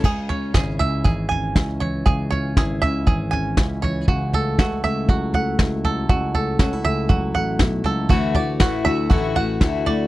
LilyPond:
<<
  \new Staff \with { instrumentName = "Five-string banjo" } { \time 4/4 \key cis \phrygian \tempo 4 = 119 gis'8 cis''8 gis'8 e''8 gis'8 gis''4 cis''8 | gis'8 cis''8 gis'8 e''8 gis'8 gis''4 cis''8 | fis'8 a'8 fis'8 e''8 fis'8 fis''4 a'8 | fis'8 a'8 fis'8 e''8 fis'8 fis''4 a'8 |
fis'8 d''8 fis'8 e''8 fis'8 fis''4 d''8 | }
  \new Staff \with { instrumentName = "Steel-string acoustic guitar" } { \time 4/4 \key cis \phrygian r1 | r1 | r1 | r1 |
<d e a e' fis'>8 <a e' fis'>8 <e a e' fis'>8 <a e' fis'>8 <d e a e' fis'>8 <a e' fis'>8 <e a e' fis'>8 <a e' fis'>8 | }
  \new Staff \with { instrumentName = "Steel-string acoustic guitar" } { \time 4/4 \key cis \phrygian << { r8 cis'8 e'8 cis'4 cis'8 e'4 | r8 cis'8 e'8 cis'4 cis'8 e'4 | r8 a8 e'8 a4 a8 e'4 | r8 a8 cis'16 e'16 a4 a8 e'4 |
r1 | } \\ { cis2 e4. e8 | cis2 e4. e8 | cis2 fis4. fis8 | cis2 fis4. fis8 |
r1 | } >> }
  \new Staff \with { instrumentName = "Picked electric bass" } { \clef bass \time 4/4 \key cis \phrygian cis,4 gis,,8 cis,8 gis,,4 cis,4 | cis,4 gis,,8 cis,8 gis,,4 cis,4 | cis,4 cis,8 cis,8 cis,4 cis,4 | cis,4 cis,8 cis,8 cis,8 a,,8 b,,8 cis,8 |
d,4 a,,8 d,8 a,,4 d,4 | }
  \new DrumStaff \with { instrumentName = "Drums" } \drummode { \time 4/4 <cymc bd tomfh>8 tomfh8 <bd sn tomfh>8 tomfh8 <bd tomfh>8 tomfh8 <bd sn tomfh>8 tomfh8 | <bd tomfh>8 tomfh8 <bd sn tomfh>8 tomfh8 <bd tomfh>8 tomfh8 <bd sn tomfh>8 tomfh8 | <bd tomfh>8 tomfh8 <bd sn tomfh>8 tomfh8 <bd tomfh>8 tomfh8 <bd sn tomfh>8 tomfh8 | <bd tomfh>8 tomfh8 <bd sn tomfh>8 tomfh8 <bd tomfh>8 tomfh8 <bd sn tomfh>8 tomfh8 |
<bd tomfh>8 tomfh8 <bd sn tomfh>8 tomfh8 <bd tomfh>8 tomfh8 <bd sn tomfh>8 tomfh8 | }
>>